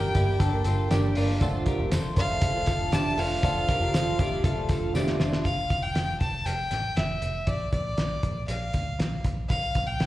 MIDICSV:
0, 0, Header, 1, 6, 480
1, 0, Start_track
1, 0, Key_signature, -1, "major"
1, 0, Tempo, 505051
1, 1344, Time_signature, 4, 2, 24, 8
1, 9562, End_track
2, 0, Start_track
2, 0, Title_t, "Violin"
2, 0, Program_c, 0, 40
2, 0, Note_on_c, 0, 79, 96
2, 1097, Note_off_c, 0, 79, 0
2, 2082, Note_on_c, 0, 77, 99
2, 2790, Note_on_c, 0, 81, 99
2, 2805, Note_off_c, 0, 77, 0
2, 3028, Note_on_c, 0, 77, 97
2, 3042, Note_off_c, 0, 81, 0
2, 4704, Note_off_c, 0, 77, 0
2, 5174, Note_on_c, 0, 77, 97
2, 5536, Note_on_c, 0, 79, 90
2, 5550, Note_off_c, 0, 77, 0
2, 5888, Note_off_c, 0, 79, 0
2, 5894, Note_on_c, 0, 81, 85
2, 6135, Note_on_c, 0, 79, 98
2, 6149, Note_off_c, 0, 81, 0
2, 6616, Note_on_c, 0, 76, 92
2, 6630, Note_off_c, 0, 79, 0
2, 7101, Note_on_c, 0, 74, 95
2, 7115, Note_off_c, 0, 76, 0
2, 7329, Note_off_c, 0, 74, 0
2, 7334, Note_on_c, 0, 74, 81
2, 8022, Note_off_c, 0, 74, 0
2, 8057, Note_on_c, 0, 77, 75
2, 8745, Note_off_c, 0, 77, 0
2, 9018, Note_on_c, 0, 77, 96
2, 9379, Note_on_c, 0, 79, 92
2, 9394, Note_off_c, 0, 77, 0
2, 9562, Note_off_c, 0, 79, 0
2, 9562, End_track
3, 0, Start_track
3, 0, Title_t, "Clean electric guitar"
3, 0, Program_c, 1, 27
3, 0, Note_on_c, 1, 67, 59
3, 0, Note_on_c, 1, 70, 73
3, 132, Note_off_c, 1, 67, 0
3, 141, Note_off_c, 1, 70, 0
3, 143, Note_on_c, 1, 67, 80
3, 149, Note_on_c, 1, 64, 63
3, 374, Note_off_c, 1, 64, 0
3, 377, Note_on_c, 1, 69, 98
3, 384, Note_off_c, 1, 67, 0
3, 385, Note_on_c, 1, 62, 68
3, 609, Note_off_c, 1, 69, 0
3, 621, Note_on_c, 1, 69, 66
3, 625, Note_off_c, 1, 62, 0
3, 630, Note_on_c, 1, 65, 60
3, 860, Note_off_c, 1, 65, 0
3, 863, Note_off_c, 1, 69, 0
3, 864, Note_on_c, 1, 67, 81
3, 870, Note_on_c, 1, 62, 66
3, 1104, Note_off_c, 1, 62, 0
3, 1104, Note_off_c, 1, 67, 0
3, 1108, Note_on_c, 1, 65, 89
3, 1115, Note_on_c, 1, 62, 58
3, 1346, Note_off_c, 1, 65, 0
3, 1349, Note_off_c, 1, 62, 0
3, 1351, Note_on_c, 1, 69, 104
3, 1356, Note_on_c, 1, 65, 84
3, 1585, Note_off_c, 1, 69, 0
3, 1589, Note_on_c, 1, 70, 76
3, 1590, Note_off_c, 1, 65, 0
3, 1595, Note_on_c, 1, 67, 62
3, 1820, Note_off_c, 1, 70, 0
3, 1824, Note_on_c, 1, 72, 74
3, 1828, Note_off_c, 1, 67, 0
3, 1832, Note_on_c, 1, 69, 55
3, 2058, Note_off_c, 1, 72, 0
3, 2064, Note_off_c, 1, 69, 0
3, 2070, Note_on_c, 1, 72, 78
3, 2075, Note_on_c, 1, 69, 57
3, 2517, Note_off_c, 1, 72, 0
3, 2520, Note_off_c, 1, 69, 0
3, 2541, Note_on_c, 1, 69, 76
3, 2549, Note_on_c, 1, 65, 63
3, 2775, Note_off_c, 1, 69, 0
3, 2779, Note_on_c, 1, 67, 79
3, 2784, Note_off_c, 1, 65, 0
3, 2788, Note_on_c, 1, 62, 62
3, 3019, Note_off_c, 1, 67, 0
3, 3023, Note_on_c, 1, 69, 74
3, 3024, Note_off_c, 1, 62, 0
3, 3029, Note_on_c, 1, 65, 60
3, 3255, Note_off_c, 1, 69, 0
3, 3265, Note_off_c, 1, 65, 0
3, 3266, Note_on_c, 1, 69, 104
3, 3275, Note_on_c, 1, 65, 75
3, 3503, Note_off_c, 1, 69, 0
3, 3508, Note_off_c, 1, 65, 0
3, 3508, Note_on_c, 1, 70, 81
3, 3515, Note_on_c, 1, 67, 60
3, 3744, Note_off_c, 1, 70, 0
3, 3748, Note_off_c, 1, 67, 0
3, 3749, Note_on_c, 1, 72, 78
3, 3757, Note_on_c, 1, 69, 63
3, 3985, Note_off_c, 1, 72, 0
3, 3986, Note_off_c, 1, 69, 0
3, 3990, Note_on_c, 1, 67, 75
3, 3995, Note_on_c, 1, 64, 65
3, 4223, Note_off_c, 1, 67, 0
3, 4227, Note_on_c, 1, 69, 93
3, 4228, Note_off_c, 1, 64, 0
3, 4234, Note_on_c, 1, 65, 65
3, 4457, Note_off_c, 1, 69, 0
3, 4467, Note_off_c, 1, 65, 0
3, 4468, Note_on_c, 1, 69, 73
3, 4477, Note_on_c, 1, 65, 54
3, 4701, Note_off_c, 1, 69, 0
3, 4705, Note_on_c, 1, 67, 78
3, 4708, Note_off_c, 1, 65, 0
3, 4712, Note_on_c, 1, 62, 63
3, 4939, Note_off_c, 1, 62, 0
3, 4940, Note_off_c, 1, 67, 0
3, 4944, Note_on_c, 1, 65, 79
3, 4950, Note_on_c, 1, 62, 53
3, 5182, Note_off_c, 1, 65, 0
3, 5185, Note_off_c, 1, 62, 0
3, 9562, End_track
4, 0, Start_track
4, 0, Title_t, "Twelve-string acoustic guitar"
4, 0, Program_c, 2, 25
4, 0, Note_on_c, 2, 55, 46
4, 0, Note_on_c, 2, 58, 61
4, 0, Note_on_c, 2, 62, 65
4, 0, Note_on_c, 2, 67, 65
4, 105, Note_off_c, 2, 55, 0
4, 116, Note_on_c, 2, 55, 66
4, 121, Note_off_c, 2, 58, 0
4, 124, Note_off_c, 2, 62, 0
4, 132, Note_on_c, 2, 58, 73
4, 135, Note_on_c, 2, 62, 80
4, 137, Note_off_c, 2, 67, 0
4, 148, Note_on_c, 2, 67, 79
4, 470, Note_off_c, 2, 67, 0
4, 482, Note_on_c, 2, 67, 68
4, 483, Note_off_c, 2, 62, 0
4, 490, Note_off_c, 2, 58, 0
4, 491, Note_off_c, 2, 55, 0
4, 495, Note_on_c, 2, 62, 59
4, 502, Note_on_c, 2, 58, 57
4, 509, Note_on_c, 2, 55, 62
4, 833, Note_off_c, 2, 55, 0
4, 844, Note_on_c, 2, 55, 72
4, 850, Note_off_c, 2, 58, 0
4, 853, Note_off_c, 2, 67, 0
4, 854, Note_off_c, 2, 62, 0
4, 862, Note_on_c, 2, 58, 75
4, 866, Note_on_c, 2, 62, 86
4, 876, Note_on_c, 2, 67, 95
4, 1082, Note_off_c, 2, 55, 0
4, 1093, Note_off_c, 2, 58, 0
4, 1093, Note_on_c, 2, 55, 69
4, 1102, Note_off_c, 2, 62, 0
4, 1104, Note_on_c, 2, 58, 71
4, 1106, Note_off_c, 2, 67, 0
4, 1114, Note_on_c, 2, 62, 72
4, 1118, Note_on_c, 2, 67, 73
4, 1333, Note_on_c, 2, 41, 96
4, 1336, Note_off_c, 2, 55, 0
4, 1336, Note_on_c, 2, 50, 105
4, 1339, Note_off_c, 2, 58, 0
4, 1340, Note_off_c, 2, 62, 0
4, 1340, Note_on_c, 2, 53, 97
4, 1343, Note_on_c, 2, 57, 107
4, 1344, Note_off_c, 2, 67, 0
4, 1348, Note_on_c, 2, 65, 117
4, 1351, Note_on_c, 2, 62, 105
4, 1689, Note_off_c, 2, 65, 0
4, 1696, Note_off_c, 2, 62, 0
4, 1698, Note_off_c, 2, 41, 0
4, 1699, Note_off_c, 2, 50, 0
4, 1700, Note_on_c, 2, 65, 61
4, 1702, Note_off_c, 2, 53, 0
4, 1703, Note_off_c, 2, 57, 0
4, 1708, Note_on_c, 2, 62, 57
4, 1720, Note_on_c, 2, 57, 60
4, 1729, Note_on_c, 2, 53, 47
4, 2036, Note_off_c, 2, 53, 0
4, 2047, Note_on_c, 2, 53, 64
4, 2049, Note_off_c, 2, 57, 0
4, 2058, Note_off_c, 2, 62, 0
4, 2060, Note_on_c, 2, 57, 68
4, 2061, Note_off_c, 2, 65, 0
4, 2069, Note_on_c, 2, 62, 71
4, 2075, Note_on_c, 2, 65, 75
4, 2399, Note_off_c, 2, 65, 0
4, 2408, Note_off_c, 2, 62, 0
4, 2410, Note_on_c, 2, 65, 66
4, 2414, Note_off_c, 2, 53, 0
4, 2418, Note_off_c, 2, 57, 0
4, 2419, Note_on_c, 2, 62, 54
4, 2430, Note_on_c, 2, 57, 55
4, 2436, Note_on_c, 2, 53, 51
4, 2760, Note_off_c, 2, 53, 0
4, 2771, Note_on_c, 2, 53, 67
4, 2772, Note_off_c, 2, 57, 0
4, 2776, Note_off_c, 2, 65, 0
4, 2780, Note_off_c, 2, 62, 0
4, 2783, Note_on_c, 2, 57, 70
4, 2792, Note_on_c, 2, 62, 60
4, 2799, Note_on_c, 2, 65, 73
4, 3005, Note_off_c, 2, 53, 0
4, 3015, Note_off_c, 2, 57, 0
4, 3016, Note_on_c, 2, 53, 62
4, 3020, Note_off_c, 2, 62, 0
4, 3026, Note_on_c, 2, 57, 62
4, 3028, Note_off_c, 2, 65, 0
4, 3031, Note_on_c, 2, 62, 64
4, 3040, Note_on_c, 2, 65, 73
4, 3250, Note_off_c, 2, 53, 0
4, 3250, Note_on_c, 2, 41, 79
4, 3254, Note_off_c, 2, 57, 0
4, 3256, Note_off_c, 2, 62, 0
4, 3260, Note_on_c, 2, 50, 84
4, 3261, Note_off_c, 2, 65, 0
4, 3261, Note_on_c, 2, 53, 82
4, 3265, Note_on_c, 2, 57, 90
4, 3267, Note_on_c, 2, 62, 94
4, 3272, Note_on_c, 2, 65, 106
4, 3598, Note_off_c, 2, 65, 0
4, 3608, Note_off_c, 2, 62, 0
4, 3609, Note_on_c, 2, 65, 62
4, 3615, Note_off_c, 2, 41, 0
4, 3616, Note_off_c, 2, 57, 0
4, 3619, Note_on_c, 2, 62, 56
4, 3620, Note_off_c, 2, 50, 0
4, 3621, Note_off_c, 2, 53, 0
4, 3627, Note_on_c, 2, 57, 54
4, 3637, Note_on_c, 2, 53, 51
4, 3964, Note_off_c, 2, 53, 0
4, 3975, Note_off_c, 2, 65, 0
4, 3976, Note_off_c, 2, 57, 0
4, 3976, Note_on_c, 2, 53, 74
4, 3980, Note_off_c, 2, 62, 0
4, 3987, Note_on_c, 2, 57, 66
4, 3997, Note_on_c, 2, 62, 70
4, 4004, Note_on_c, 2, 65, 73
4, 4316, Note_off_c, 2, 65, 0
4, 4327, Note_on_c, 2, 65, 69
4, 4328, Note_off_c, 2, 62, 0
4, 4335, Note_off_c, 2, 57, 0
4, 4338, Note_off_c, 2, 53, 0
4, 4340, Note_on_c, 2, 62, 61
4, 4346, Note_on_c, 2, 57, 61
4, 4353, Note_on_c, 2, 53, 57
4, 4678, Note_off_c, 2, 53, 0
4, 4687, Note_off_c, 2, 57, 0
4, 4690, Note_on_c, 2, 53, 76
4, 4694, Note_off_c, 2, 65, 0
4, 4698, Note_off_c, 2, 62, 0
4, 4698, Note_on_c, 2, 57, 78
4, 4709, Note_on_c, 2, 62, 74
4, 4714, Note_on_c, 2, 65, 78
4, 4903, Note_off_c, 2, 53, 0
4, 4915, Note_on_c, 2, 53, 66
4, 4920, Note_off_c, 2, 57, 0
4, 4928, Note_off_c, 2, 62, 0
4, 4931, Note_on_c, 2, 57, 73
4, 4934, Note_off_c, 2, 65, 0
4, 4939, Note_on_c, 2, 62, 79
4, 4945, Note_on_c, 2, 65, 82
4, 5168, Note_off_c, 2, 53, 0
4, 5176, Note_off_c, 2, 57, 0
4, 5180, Note_off_c, 2, 62, 0
4, 5183, Note_off_c, 2, 65, 0
4, 9562, End_track
5, 0, Start_track
5, 0, Title_t, "Picked electric bass"
5, 0, Program_c, 3, 34
5, 0, Note_on_c, 3, 31, 94
5, 102, Note_off_c, 3, 31, 0
5, 145, Note_on_c, 3, 31, 89
5, 342, Note_off_c, 3, 31, 0
5, 381, Note_on_c, 3, 31, 105
5, 579, Note_off_c, 3, 31, 0
5, 619, Note_on_c, 3, 31, 100
5, 818, Note_off_c, 3, 31, 0
5, 867, Note_on_c, 3, 31, 94
5, 1063, Note_off_c, 3, 31, 0
5, 1106, Note_on_c, 3, 31, 102
5, 1302, Note_off_c, 3, 31, 0
5, 1340, Note_on_c, 3, 29, 95
5, 1538, Note_off_c, 3, 29, 0
5, 1708, Note_on_c, 3, 29, 85
5, 1805, Note_off_c, 3, 29, 0
5, 1824, Note_on_c, 3, 29, 101
5, 2020, Note_off_c, 3, 29, 0
5, 2060, Note_on_c, 3, 29, 108
5, 2257, Note_off_c, 3, 29, 0
5, 2298, Note_on_c, 3, 29, 107
5, 2496, Note_off_c, 3, 29, 0
5, 2540, Note_on_c, 3, 29, 95
5, 2737, Note_off_c, 3, 29, 0
5, 2775, Note_on_c, 3, 29, 94
5, 2974, Note_off_c, 3, 29, 0
5, 3016, Note_on_c, 3, 29, 107
5, 3215, Note_off_c, 3, 29, 0
5, 3262, Note_on_c, 3, 29, 103
5, 3458, Note_off_c, 3, 29, 0
5, 3613, Note_on_c, 3, 29, 85
5, 3715, Note_off_c, 3, 29, 0
5, 3734, Note_on_c, 3, 29, 108
5, 3933, Note_off_c, 3, 29, 0
5, 3982, Note_on_c, 3, 29, 86
5, 4178, Note_off_c, 3, 29, 0
5, 4219, Note_on_c, 3, 29, 94
5, 4416, Note_off_c, 3, 29, 0
5, 4461, Note_on_c, 3, 29, 100
5, 4657, Note_off_c, 3, 29, 0
5, 4689, Note_on_c, 3, 29, 91
5, 4891, Note_off_c, 3, 29, 0
5, 4930, Note_on_c, 3, 29, 93
5, 5131, Note_off_c, 3, 29, 0
5, 5176, Note_on_c, 3, 29, 84
5, 5375, Note_off_c, 3, 29, 0
5, 5419, Note_on_c, 3, 29, 88
5, 5616, Note_off_c, 3, 29, 0
5, 5651, Note_on_c, 3, 29, 85
5, 5852, Note_off_c, 3, 29, 0
5, 5901, Note_on_c, 3, 29, 80
5, 6098, Note_off_c, 3, 29, 0
5, 6139, Note_on_c, 3, 29, 72
5, 6337, Note_off_c, 3, 29, 0
5, 6381, Note_on_c, 3, 33, 79
5, 6579, Note_off_c, 3, 33, 0
5, 6624, Note_on_c, 3, 29, 82
5, 6820, Note_off_c, 3, 29, 0
5, 6863, Note_on_c, 3, 29, 89
5, 7060, Note_off_c, 3, 29, 0
5, 7104, Note_on_c, 3, 34, 75
5, 7301, Note_off_c, 3, 34, 0
5, 7341, Note_on_c, 3, 34, 74
5, 7539, Note_off_c, 3, 34, 0
5, 7584, Note_on_c, 3, 34, 92
5, 7781, Note_off_c, 3, 34, 0
5, 7824, Note_on_c, 3, 34, 77
5, 8021, Note_off_c, 3, 34, 0
5, 8064, Note_on_c, 3, 34, 79
5, 8262, Note_off_c, 3, 34, 0
5, 8307, Note_on_c, 3, 38, 74
5, 8504, Note_off_c, 3, 38, 0
5, 8543, Note_on_c, 3, 34, 82
5, 8742, Note_off_c, 3, 34, 0
5, 8787, Note_on_c, 3, 34, 86
5, 8984, Note_off_c, 3, 34, 0
5, 9028, Note_on_c, 3, 34, 91
5, 9225, Note_off_c, 3, 34, 0
5, 9268, Note_on_c, 3, 34, 87
5, 9465, Note_off_c, 3, 34, 0
5, 9504, Note_on_c, 3, 34, 90
5, 9562, Note_off_c, 3, 34, 0
5, 9562, End_track
6, 0, Start_track
6, 0, Title_t, "Drums"
6, 140, Note_on_c, 9, 42, 66
6, 144, Note_on_c, 9, 36, 87
6, 150, Note_on_c, 9, 54, 57
6, 235, Note_off_c, 9, 42, 0
6, 239, Note_off_c, 9, 36, 0
6, 245, Note_off_c, 9, 54, 0
6, 381, Note_on_c, 9, 36, 100
6, 381, Note_on_c, 9, 42, 118
6, 386, Note_on_c, 9, 54, 30
6, 476, Note_off_c, 9, 36, 0
6, 476, Note_off_c, 9, 42, 0
6, 481, Note_off_c, 9, 54, 0
6, 612, Note_on_c, 9, 42, 67
6, 621, Note_on_c, 9, 54, 51
6, 707, Note_off_c, 9, 42, 0
6, 716, Note_off_c, 9, 54, 0
6, 862, Note_on_c, 9, 42, 91
6, 865, Note_on_c, 9, 54, 79
6, 866, Note_on_c, 9, 38, 102
6, 957, Note_off_c, 9, 42, 0
6, 960, Note_off_c, 9, 54, 0
6, 961, Note_off_c, 9, 38, 0
6, 1096, Note_on_c, 9, 46, 77
6, 1112, Note_on_c, 9, 54, 49
6, 1191, Note_off_c, 9, 46, 0
6, 1207, Note_off_c, 9, 54, 0
6, 1340, Note_on_c, 9, 42, 86
6, 1341, Note_on_c, 9, 36, 104
6, 1349, Note_on_c, 9, 54, 55
6, 1435, Note_off_c, 9, 42, 0
6, 1436, Note_off_c, 9, 36, 0
6, 1444, Note_off_c, 9, 54, 0
6, 1576, Note_on_c, 9, 42, 62
6, 1582, Note_on_c, 9, 36, 98
6, 1585, Note_on_c, 9, 54, 37
6, 1671, Note_off_c, 9, 42, 0
6, 1677, Note_off_c, 9, 36, 0
6, 1680, Note_off_c, 9, 54, 0
6, 1821, Note_on_c, 9, 42, 100
6, 1824, Note_on_c, 9, 38, 95
6, 1828, Note_on_c, 9, 54, 105
6, 1916, Note_off_c, 9, 42, 0
6, 1919, Note_off_c, 9, 38, 0
6, 1923, Note_off_c, 9, 54, 0
6, 2057, Note_on_c, 9, 42, 65
6, 2062, Note_on_c, 9, 36, 88
6, 2063, Note_on_c, 9, 54, 56
6, 2152, Note_off_c, 9, 42, 0
6, 2157, Note_off_c, 9, 36, 0
6, 2158, Note_off_c, 9, 54, 0
6, 2296, Note_on_c, 9, 42, 115
6, 2299, Note_on_c, 9, 36, 88
6, 2391, Note_off_c, 9, 42, 0
6, 2395, Note_off_c, 9, 36, 0
6, 2531, Note_on_c, 9, 42, 74
6, 2537, Note_on_c, 9, 38, 36
6, 2541, Note_on_c, 9, 54, 51
6, 2542, Note_on_c, 9, 36, 79
6, 2626, Note_off_c, 9, 42, 0
6, 2632, Note_off_c, 9, 38, 0
6, 2636, Note_off_c, 9, 54, 0
6, 2637, Note_off_c, 9, 36, 0
6, 2778, Note_on_c, 9, 42, 88
6, 2783, Note_on_c, 9, 38, 107
6, 2786, Note_on_c, 9, 54, 89
6, 2873, Note_off_c, 9, 42, 0
6, 2878, Note_off_c, 9, 38, 0
6, 2881, Note_off_c, 9, 54, 0
6, 3018, Note_on_c, 9, 46, 74
6, 3030, Note_on_c, 9, 54, 45
6, 3113, Note_off_c, 9, 46, 0
6, 3125, Note_off_c, 9, 54, 0
6, 3262, Note_on_c, 9, 36, 101
6, 3262, Note_on_c, 9, 42, 98
6, 3273, Note_on_c, 9, 54, 52
6, 3357, Note_off_c, 9, 36, 0
6, 3357, Note_off_c, 9, 42, 0
6, 3368, Note_off_c, 9, 54, 0
6, 3503, Note_on_c, 9, 42, 78
6, 3504, Note_on_c, 9, 36, 100
6, 3506, Note_on_c, 9, 54, 37
6, 3598, Note_off_c, 9, 42, 0
6, 3599, Note_off_c, 9, 36, 0
6, 3601, Note_off_c, 9, 54, 0
6, 3745, Note_on_c, 9, 42, 105
6, 3749, Note_on_c, 9, 38, 107
6, 3753, Note_on_c, 9, 54, 104
6, 3840, Note_off_c, 9, 42, 0
6, 3844, Note_off_c, 9, 38, 0
6, 3848, Note_off_c, 9, 54, 0
6, 3984, Note_on_c, 9, 36, 86
6, 3984, Note_on_c, 9, 42, 65
6, 3985, Note_on_c, 9, 54, 56
6, 4079, Note_off_c, 9, 36, 0
6, 4079, Note_off_c, 9, 42, 0
6, 4080, Note_off_c, 9, 54, 0
6, 4220, Note_on_c, 9, 36, 96
6, 4221, Note_on_c, 9, 42, 102
6, 4315, Note_off_c, 9, 36, 0
6, 4316, Note_off_c, 9, 42, 0
6, 4455, Note_on_c, 9, 42, 67
6, 4461, Note_on_c, 9, 38, 36
6, 4462, Note_on_c, 9, 36, 80
6, 4463, Note_on_c, 9, 54, 48
6, 4550, Note_off_c, 9, 42, 0
6, 4556, Note_off_c, 9, 38, 0
6, 4557, Note_off_c, 9, 36, 0
6, 4558, Note_off_c, 9, 54, 0
6, 4704, Note_on_c, 9, 54, 88
6, 4707, Note_on_c, 9, 38, 56
6, 4799, Note_off_c, 9, 54, 0
6, 4802, Note_off_c, 9, 38, 0
6, 4819, Note_on_c, 9, 38, 63
6, 4914, Note_off_c, 9, 38, 0
6, 4940, Note_on_c, 9, 38, 90
6, 4945, Note_on_c, 9, 54, 46
6, 5035, Note_off_c, 9, 38, 0
6, 5040, Note_off_c, 9, 54, 0
6, 5063, Note_on_c, 9, 38, 106
6, 5158, Note_off_c, 9, 38, 0
6, 5180, Note_on_c, 9, 36, 85
6, 5181, Note_on_c, 9, 42, 79
6, 5275, Note_off_c, 9, 36, 0
6, 5276, Note_off_c, 9, 42, 0
6, 5420, Note_on_c, 9, 42, 62
6, 5421, Note_on_c, 9, 36, 84
6, 5515, Note_off_c, 9, 42, 0
6, 5516, Note_off_c, 9, 36, 0
6, 5659, Note_on_c, 9, 42, 91
6, 5662, Note_on_c, 9, 38, 93
6, 5754, Note_off_c, 9, 42, 0
6, 5757, Note_off_c, 9, 38, 0
6, 5897, Note_on_c, 9, 42, 61
6, 5901, Note_on_c, 9, 36, 79
6, 5992, Note_off_c, 9, 42, 0
6, 5996, Note_off_c, 9, 36, 0
6, 6141, Note_on_c, 9, 42, 84
6, 6236, Note_off_c, 9, 42, 0
6, 6375, Note_on_c, 9, 42, 61
6, 6382, Note_on_c, 9, 38, 30
6, 6470, Note_off_c, 9, 42, 0
6, 6477, Note_off_c, 9, 38, 0
6, 6623, Note_on_c, 9, 42, 81
6, 6628, Note_on_c, 9, 38, 89
6, 6718, Note_off_c, 9, 42, 0
6, 6723, Note_off_c, 9, 38, 0
6, 6861, Note_on_c, 9, 42, 59
6, 6956, Note_off_c, 9, 42, 0
6, 7098, Note_on_c, 9, 42, 85
6, 7102, Note_on_c, 9, 36, 102
6, 7193, Note_off_c, 9, 42, 0
6, 7197, Note_off_c, 9, 36, 0
6, 7342, Note_on_c, 9, 42, 61
6, 7344, Note_on_c, 9, 36, 86
6, 7438, Note_off_c, 9, 42, 0
6, 7439, Note_off_c, 9, 36, 0
6, 7581, Note_on_c, 9, 42, 83
6, 7584, Note_on_c, 9, 38, 90
6, 7676, Note_off_c, 9, 42, 0
6, 7679, Note_off_c, 9, 38, 0
6, 7821, Note_on_c, 9, 42, 58
6, 7825, Note_on_c, 9, 36, 73
6, 7916, Note_off_c, 9, 42, 0
6, 7920, Note_off_c, 9, 36, 0
6, 8061, Note_on_c, 9, 42, 88
6, 8156, Note_off_c, 9, 42, 0
6, 8302, Note_on_c, 9, 42, 63
6, 8308, Note_on_c, 9, 36, 71
6, 8397, Note_off_c, 9, 42, 0
6, 8403, Note_off_c, 9, 36, 0
6, 8550, Note_on_c, 9, 42, 77
6, 8554, Note_on_c, 9, 38, 90
6, 8645, Note_off_c, 9, 42, 0
6, 8649, Note_off_c, 9, 38, 0
6, 8785, Note_on_c, 9, 42, 66
6, 8788, Note_on_c, 9, 36, 70
6, 8880, Note_off_c, 9, 42, 0
6, 8883, Note_off_c, 9, 36, 0
6, 9029, Note_on_c, 9, 36, 86
6, 9029, Note_on_c, 9, 42, 86
6, 9124, Note_off_c, 9, 36, 0
6, 9124, Note_off_c, 9, 42, 0
6, 9265, Note_on_c, 9, 42, 61
6, 9270, Note_on_c, 9, 36, 84
6, 9360, Note_off_c, 9, 42, 0
6, 9365, Note_off_c, 9, 36, 0
6, 9505, Note_on_c, 9, 42, 80
6, 9509, Note_on_c, 9, 38, 91
6, 9562, Note_off_c, 9, 38, 0
6, 9562, Note_off_c, 9, 42, 0
6, 9562, End_track
0, 0, End_of_file